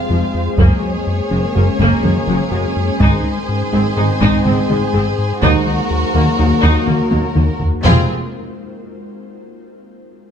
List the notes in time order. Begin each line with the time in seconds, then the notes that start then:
Already playing: G#3 C4 F4 G#4 C5 F5
0.10 F1 F2 F3 F4
0.34 F2
0.58 F#1 F#2 F#3 A#3 C#4 G#4 A#4 C#5, taiko
0.82 F#3
1.07 F#2
1.31 F#1 F#2 F#3 G#3 C#4
1.55 F#1 F#2 A#3 F#4
1.79 F#1 F#2 F#3 A#3, taiko
2.03 F#1 F#2 F#3 G#3 C#4, taiko mid
2.28 F#1 F#2 F#3 C#4, taiko mid
2.52 F#1 F#2 G#3 F#4
2.76 F#2
3.00 G#1 G#2 G#3 C4 D#4 G#4 C5, taiko
3.24 G#3
3.49 G#2
3.73 G#1 G#2 G#3 C4 D#4
3.97 G#1 G#2 D#4 G#4
4.21 G#1 G#2 G#3 D#4, taiko
4.45 G#1 G#2 G#3 C4 D#4, taiko mid
4.70 G#1 G#2 G#3 D#4, taiko mid
4.94 G#1 G#2 C4 G#4
5.18 G#2
5.42 D#2 D#3 F#3 A#3 D#4 F#4 A#4, taiko
5.67 D#3
5.91 D#2
6.15 D#2 D#3 A#3
6.39 D#2 D#4
6.63 D#2 D#3 D#4, taiko
6.87 D#2 D#3 A#3, taiko mid
7.11 D#2 D#3 F#3 A#3, taiko high
7.35 D#2 A#3 D#4, taiko mid
7.60 D#2, taiko low
7.84 F1 F2 G#3 C4 F4 G#4, taiko low